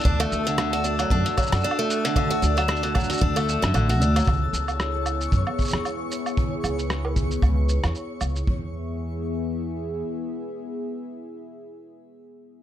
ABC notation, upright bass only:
X:1
M:4/4
L:1/16
Q:"Swing 16ths" 1/4=114
K:Emix
V:1 name="Upright bass" clef=bass
D,, z D,,6 F,, z2 F,, z4 | z2 D,,6 D,,3 F,, A,,,2 D,, z | C,, z C,,6 F,, z2 E,, z4 | z2 C,,6 C,,3 E,, z2 C,, z |
E,,12 z4 | z16 |]